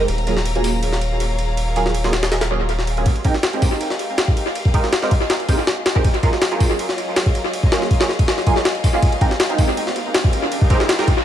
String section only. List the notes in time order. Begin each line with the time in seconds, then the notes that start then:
Already playing: A#5
0.09 C#5 F5
3.06 G#3 G4 A#4 D#5 F5
6.04 F#3 C#5 F5
9.02 G4 A#4